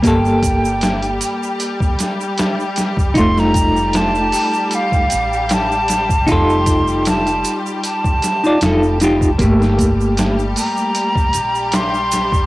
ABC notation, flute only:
X:1
M:4/4
L:1/16
Q:"Swing 16ths" 1/4=77
K:Gm
V:1 name="Flute"
g8 z8 | c' b3 a4 f4 a4 | c'4 a3 z a6 z2 | z6 b6 c'4 |]